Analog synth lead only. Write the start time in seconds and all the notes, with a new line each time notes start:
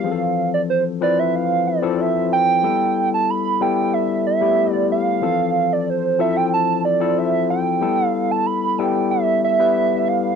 Already playing: F5
0.54 D5
0.70 C5
1.03 D5
1.19 E5
1.35 F5
1.68 D5
2.01 E5
2.33 G5
3.14 A5
3.30 B5
3.62 G5
3.94 E5
4.27 E5
4.73 D5
4.92 F5
5.73 D5
5.89 C5
6.21 E5
6.37 G5
6.54 A5
6.85 D5
7.18 E5
7.50 G5
8.06 F5
8.31 A5
8.46 B5
8.79 G5
9.11 E5
9.44 E5
10.08 F5